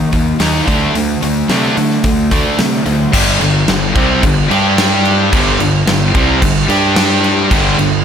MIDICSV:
0, 0, Header, 1, 4, 480
1, 0, Start_track
1, 0, Key_signature, -2, "minor"
1, 0, Tempo, 546448
1, 837, Time_signature, 4, 2, 24, 8
1, 7068, End_track
2, 0, Start_track
2, 0, Title_t, "Distorted electric guitar"
2, 0, Program_c, 0, 30
2, 0, Note_on_c, 0, 51, 56
2, 0, Note_on_c, 0, 58, 70
2, 89, Note_off_c, 0, 51, 0
2, 92, Note_off_c, 0, 58, 0
2, 113, Note_on_c, 0, 51, 63
2, 117, Note_on_c, 0, 58, 71
2, 331, Note_off_c, 0, 51, 0
2, 333, Note_off_c, 0, 58, 0
2, 350, Note_on_c, 0, 51, 83
2, 357, Note_on_c, 0, 58, 84
2, 362, Note_on_c, 0, 63, 85
2, 579, Note_off_c, 0, 51, 0
2, 582, Note_off_c, 0, 58, 0
2, 585, Note_off_c, 0, 63, 0
2, 594, Note_on_c, 0, 50, 88
2, 600, Note_on_c, 0, 57, 81
2, 603, Note_on_c, 0, 62, 97
2, 821, Note_off_c, 0, 50, 0
2, 824, Note_off_c, 0, 57, 0
2, 826, Note_off_c, 0, 62, 0
2, 841, Note_on_c, 0, 50, 73
2, 846, Note_on_c, 0, 57, 71
2, 1056, Note_off_c, 0, 50, 0
2, 1058, Note_off_c, 0, 57, 0
2, 1077, Note_on_c, 0, 50, 71
2, 1081, Note_on_c, 0, 57, 75
2, 1294, Note_off_c, 0, 50, 0
2, 1296, Note_off_c, 0, 57, 0
2, 1317, Note_on_c, 0, 50, 84
2, 1320, Note_on_c, 0, 57, 84
2, 1323, Note_on_c, 0, 62, 96
2, 1543, Note_off_c, 0, 50, 0
2, 1545, Note_off_c, 0, 57, 0
2, 1547, Note_off_c, 0, 62, 0
2, 1558, Note_on_c, 0, 50, 54
2, 1561, Note_on_c, 0, 57, 62
2, 1775, Note_off_c, 0, 50, 0
2, 1776, Note_off_c, 0, 57, 0
2, 1794, Note_on_c, 0, 50, 64
2, 1797, Note_on_c, 0, 57, 66
2, 2013, Note_off_c, 0, 50, 0
2, 2014, Note_off_c, 0, 57, 0
2, 2038, Note_on_c, 0, 50, 82
2, 2038, Note_on_c, 0, 57, 78
2, 2043, Note_on_c, 0, 62, 87
2, 2264, Note_off_c, 0, 50, 0
2, 2264, Note_off_c, 0, 57, 0
2, 2267, Note_off_c, 0, 62, 0
2, 2274, Note_on_c, 0, 50, 72
2, 2275, Note_on_c, 0, 57, 70
2, 2493, Note_off_c, 0, 50, 0
2, 2493, Note_off_c, 0, 57, 0
2, 2511, Note_on_c, 0, 50, 58
2, 2514, Note_on_c, 0, 57, 67
2, 2731, Note_off_c, 0, 50, 0
2, 2733, Note_off_c, 0, 57, 0
2, 2746, Note_on_c, 0, 43, 84
2, 2750, Note_on_c, 0, 50, 100
2, 2756, Note_on_c, 0, 55, 99
2, 2986, Note_off_c, 0, 43, 0
2, 2988, Note_off_c, 0, 50, 0
2, 2991, Note_off_c, 0, 55, 0
2, 2999, Note_on_c, 0, 43, 60
2, 3000, Note_on_c, 0, 50, 71
2, 3191, Note_off_c, 0, 43, 0
2, 3192, Note_off_c, 0, 50, 0
2, 3238, Note_on_c, 0, 43, 64
2, 3244, Note_on_c, 0, 50, 78
2, 3431, Note_off_c, 0, 43, 0
2, 3434, Note_off_c, 0, 50, 0
2, 3476, Note_on_c, 0, 48, 80
2, 3477, Note_on_c, 0, 55, 78
2, 3484, Note_on_c, 0, 60, 94
2, 3711, Note_off_c, 0, 48, 0
2, 3711, Note_off_c, 0, 55, 0
2, 3715, Note_off_c, 0, 60, 0
2, 3721, Note_on_c, 0, 43, 56
2, 3725, Note_on_c, 0, 50, 59
2, 3912, Note_off_c, 0, 43, 0
2, 3914, Note_off_c, 0, 50, 0
2, 3957, Note_on_c, 0, 55, 87
2, 3964, Note_on_c, 0, 62, 84
2, 3967, Note_on_c, 0, 67, 95
2, 4666, Note_on_c, 0, 43, 88
2, 4667, Note_off_c, 0, 55, 0
2, 4674, Note_off_c, 0, 62, 0
2, 4675, Note_on_c, 0, 50, 96
2, 4676, Note_off_c, 0, 67, 0
2, 4677, Note_on_c, 0, 55, 107
2, 4905, Note_off_c, 0, 43, 0
2, 4907, Note_off_c, 0, 50, 0
2, 4911, Note_off_c, 0, 55, 0
2, 4915, Note_on_c, 0, 43, 55
2, 4918, Note_on_c, 0, 50, 70
2, 5109, Note_off_c, 0, 43, 0
2, 5110, Note_off_c, 0, 50, 0
2, 5164, Note_on_c, 0, 43, 66
2, 5167, Note_on_c, 0, 50, 69
2, 5353, Note_off_c, 0, 43, 0
2, 5355, Note_off_c, 0, 50, 0
2, 5397, Note_on_c, 0, 48, 84
2, 5400, Note_on_c, 0, 55, 95
2, 5403, Note_on_c, 0, 60, 94
2, 5630, Note_off_c, 0, 48, 0
2, 5632, Note_off_c, 0, 55, 0
2, 5633, Note_off_c, 0, 60, 0
2, 5635, Note_on_c, 0, 43, 51
2, 5640, Note_on_c, 0, 50, 70
2, 5829, Note_off_c, 0, 43, 0
2, 5831, Note_off_c, 0, 50, 0
2, 5875, Note_on_c, 0, 55, 94
2, 5879, Note_on_c, 0, 62, 88
2, 5884, Note_on_c, 0, 67, 98
2, 6586, Note_off_c, 0, 55, 0
2, 6588, Note_on_c, 0, 43, 92
2, 6591, Note_off_c, 0, 62, 0
2, 6593, Note_on_c, 0, 50, 103
2, 6594, Note_off_c, 0, 67, 0
2, 6596, Note_on_c, 0, 55, 107
2, 6826, Note_off_c, 0, 43, 0
2, 6828, Note_off_c, 0, 50, 0
2, 6830, Note_off_c, 0, 55, 0
2, 6836, Note_on_c, 0, 43, 65
2, 6840, Note_on_c, 0, 50, 79
2, 7029, Note_off_c, 0, 43, 0
2, 7031, Note_off_c, 0, 50, 0
2, 7068, End_track
3, 0, Start_track
3, 0, Title_t, "Picked electric bass"
3, 0, Program_c, 1, 34
3, 108, Note_on_c, 1, 39, 76
3, 284, Note_off_c, 1, 39, 0
3, 349, Note_on_c, 1, 39, 76
3, 525, Note_off_c, 1, 39, 0
3, 592, Note_on_c, 1, 38, 92
3, 767, Note_off_c, 1, 38, 0
3, 832, Note_on_c, 1, 38, 80
3, 1008, Note_off_c, 1, 38, 0
3, 1077, Note_on_c, 1, 38, 76
3, 1251, Note_off_c, 1, 38, 0
3, 1309, Note_on_c, 1, 48, 80
3, 1486, Note_off_c, 1, 48, 0
3, 1558, Note_on_c, 1, 50, 82
3, 1731, Note_off_c, 1, 50, 0
3, 1786, Note_on_c, 1, 38, 80
3, 2138, Note_off_c, 1, 38, 0
3, 2274, Note_on_c, 1, 48, 79
3, 2449, Note_off_c, 1, 48, 0
3, 2512, Note_on_c, 1, 38, 89
3, 2688, Note_off_c, 1, 38, 0
3, 2752, Note_on_c, 1, 31, 94
3, 2979, Note_off_c, 1, 31, 0
3, 2988, Note_on_c, 1, 31, 71
3, 3216, Note_off_c, 1, 31, 0
3, 3233, Note_on_c, 1, 31, 85
3, 3459, Note_off_c, 1, 31, 0
3, 3472, Note_on_c, 1, 36, 95
3, 3699, Note_off_c, 1, 36, 0
3, 3715, Note_on_c, 1, 31, 86
3, 3940, Note_off_c, 1, 31, 0
3, 3953, Note_on_c, 1, 43, 82
3, 4641, Note_off_c, 1, 43, 0
3, 4677, Note_on_c, 1, 31, 93
3, 4901, Note_off_c, 1, 31, 0
3, 4914, Note_on_c, 1, 31, 74
3, 5139, Note_off_c, 1, 31, 0
3, 5150, Note_on_c, 1, 31, 74
3, 5377, Note_off_c, 1, 31, 0
3, 5398, Note_on_c, 1, 36, 100
3, 5621, Note_off_c, 1, 36, 0
3, 5638, Note_on_c, 1, 31, 78
3, 5861, Note_off_c, 1, 31, 0
3, 5876, Note_on_c, 1, 43, 93
3, 6562, Note_off_c, 1, 43, 0
3, 6595, Note_on_c, 1, 31, 86
3, 6819, Note_off_c, 1, 31, 0
3, 6832, Note_on_c, 1, 31, 75
3, 7058, Note_off_c, 1, 31, 0
3, 7068, End_track
4, 0, Start_track
4, 0, Title_t, "Drums"
4, 112, Note_on_c, 9, 46, 47
4, 113, Note_on_c, 9, 36, 83
4, 200, Note_off_c, 9, 46, 0
4, 201, Note_off_c, 9, 36, 0
4, 350, Note_on_c, 9, 46, 67
4, 352, Note_on_c, 9, 38, 97
4, 438, Note_off_c, 9, 46, 0
4, 440, Note_off_c, 9, 38, 0
4, 594, Note_on_c, 9, 36, 82
4, 596, Note_on_c, 9, 46, 47
4, 682, Note_off_c, 9, 36, 0
4, 684, Note_off_c, 9, 46, 0
4, 838, Note_on_c, 9, 46, 63
4, 925, Note_off_c, 9, 46, 0
4, 1078, Note_on_c, 9, 46, 46
4, 1166, Note_off_c, 9, 46, 0
4, 1313, Note_on_c, 9, 46, 61
4, 1315, Note_on_c, 9, 38, 105
4, 1401, Note_off_c, 9, 46, 0
4, 1402, Note_off_c, 9, 38, 0
4, 1556, Note_on_c, 9, 46, 49
4, 1644, Note_off_c, 9, 46, 0
4, 1675, Note_on_c, 9, 38, 24
4, 1763, Note_off_c, 9, 38, 0
4, 1790, Note_on_c, 9, 46, 64
4, 1793, Note_on_c, 9, 36, 101
4, 1877, Note_off_c, 9, 46, 0
4, 1880, Note_off_c, 9, 36, 0
4, 2031, Note_on_c, 9, 46, 51
4, 2033, Note_on_c, 9, 36, 80
4, 2119, Note_off_c, 9, 46, 0
4, 2121, Note_off_c, 9, 36, 0
4, 2272, Note_on_c, 9, 46, 67
4, 2273, Note_on_c, 9, 38, 103
4, 2360, Note_off_c, 9, 46, 0
4, 2361, Note_off_c, 9, 38, 0
4, 2512, Note_on_c, 9, 46, 38
4, 2600, Note_off_c, 9, 46, 0
4, 2753, Note_on_c, 9, 36, 107
4, 2756, Note_on_c, 9, 49, 123
4, 2756, Note_on_c, 9, 57, 83
4, 2841, Note_off_c, 9, 36, 0
4, 2844, Note_off_c, 9, 49, 0
4, 2844, Note_off_c, 9, 57, 0
4, 2997, Note_on_c, 9, 57, 55
4, 3084, Note_off_c, 9, 57, 0
4, 3232, Note_on_c, 9, 57, 74
4, 3234, Note_on_c, 9, 38, 107
4, 3320, Note_off_c, 9, 57, 0
4, 3322, Note_off_c, 9, 38, 0
4, 3475, Note_on_c, 9, 36, 102
4, 3475, Note_on_c, 9, 57, 56
4, 3562, Note_off_c, 9, 57, 0
4, 3563, Note_off_c, 9, 36, 0
4, 3717, Note_on_c, 9, 36, 96
4, 3717, Note_on_c, 9, 57, 78
4, 3805, Note_off_c, 9, 36, 0
4, 3805, Note_off_c, 9, 57, 0
4, 3962, Note_on_c, 9, 57, 67
4, 4050, Note_off_c, 9, 57, 0
4, 4199, Note_on_c, 9, 57, 90
4, 4201, Note_on_c, 9, 38, 114
4, 4287, Note_off_c, 9, 57, 0
4, 4289, Note_off_c, 9, 38, 0
4, 4439, Note_on_c, 9, 57, 51
4, 4527, Note_off_c, 9, 57, 0
4, 4679, Note_on_c, 9, 57, 88
4, 4681, Note_on_c, 9, 36, 115
4, 4767, Note_off_c, 9, 57, 0
4, 4769, Note_off_c, 9, 36, 0
4, 4920, Note_on_c, 9, 57, 60
4, 5008, Note_off_c, 9, 57, 0
4, 5159, Note_on_c, 9, 57, 81
4, 5161, Note_on_c, 9, 38, 106
4, 5247, Note_off_c, 9, 57, 0
4, 5249, Note_off_c, 9, 38, 0
4, 5401, Note_on_c, 9, 36, 103
4, 5401, Note_on_c, 9, 57, 64
4, 5489, Note_off_c, 9, 36, 0
4, 5489, Note_off_c, 9, 57, 0
4, 5639, Note_on_c, 9, 57, 93
4, 5640, Note_on_c, 9, 36, 96
4, 5727, Note_off_c, 9, 57, 0
4, 5728, Note_off_c, 9, 36, 0
4, 5881, Note_on_c, 9, 57, 65
4, 5969, Note_off_c, 9, 57, 0
4, 6116, Note_on_c, 9, 57, 83
4, 6117, Note_on_c, 9, 38, 120
4, 6203, Note_off_c, 9, 57, 0
4, 6205, Note_off_c, 9, 38, 0
4, 6360, Note_on_c, 9, 57, 50
4, 6448, Note_off_c, 9, 57, 0
4, 6598, Note_on_c, 9, 36, 110
4, 6598, Note_on_c, 9, 57, 84
4, 6686, Note_off_c, 9, 36, 0
4, 6686, Note_off_c, 9, 57, 0
4, 6842, Note_on_c, 9, 57, 62
4, 6929, Note_off_c, 9, 57, 0
4, 7068, End_track
0, 0, End_of_file